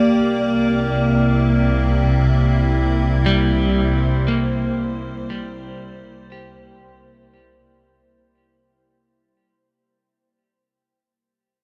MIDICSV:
0, 0, Header, 1, 4, 480
1, 0, Start_track
1, 0, Tempo, 1016949
1, 108, Time_signature, 4, 2, 24, 8
1, 5493, End_track
2, 0, Start_track
2, 0, Title_t, "Ambient pad"
2, 0, Program_c, 0, 92
2, 0, Note_on_c, 0, 58, 75
2, 0, Note_on_c, 0, 67, 74
2, 0, Note_on_c, 0, 74, 68
2, 105, Note_on_c, 0, 48, 73
2, 297, Note_on_c, 0, 64, 73
2, 1192, Note_off_c, 0, 67, 0
2, 1485, Note_on_c, 0, 72, 67
2, 1633, Note_off_c, 0, 74, 0
2, 3946, Note_off_c, 0, 48, 0
2, 3946, Note_off_c, 0, 64, 0
2, 3949, Note_off_c, 0, 58, 0
2, 3949, Note_off_c, 0, 72, 0
2, 5493, End_track
3, 0, Start_track
3, 0, Title_t, "Clean electric guitar"
3, 0, Program_c, 1, 27
3, 1539, Note_on_c, 1, 55, 64
3, 2021, Note_on_c, 1, 58, 59
3, 2496, Note_off_c, 1, 55, 0
3, 2502, Note_on_c, 1, 55, 50
3, 2600, Note_off_c, 1, 58, 0
3, 2983, Note_on_c, 1, 67, 45
3, 3801, Note_off_c, 1, 67, 0
3, 4496, Note_off_c, 1, 55, 0
3, 5493, End_track
4, 0, Start_track
4, 0, Title_t, "Double bass section"
4, 0, Program_c, 2, 48
4, 0, Note_on_c, 2, 39, 74
4, 86, Note_off_c, 2, 39, 0
4, 111, Note_on_c, 2, 36, 78
4, 3925, Note_off_c, 2, 36, 0
4, 5493, End_track
0, 0, End_of_file